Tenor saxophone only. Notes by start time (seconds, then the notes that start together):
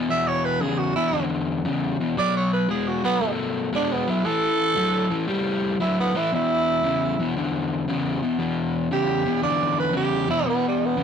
0.11 E5
0.27 C#5
0.45 B4
0.61 G#4
0.78 F#4
0.96 E4
2.19 D5
2.37 C#5
2.53 B4
2.70 G#4
2.88 F#4
3.05 B3
3.75 D4
3.92 B3
4.10 E4
4.26 A4
5.81 E4
6.00 B3
6.17 E4
6.35 E4
8.93 G4
9.43 D5
9.80 B4
9.97 G4
10.30 E4
10.50 B3
10.68 G3
10.86 B3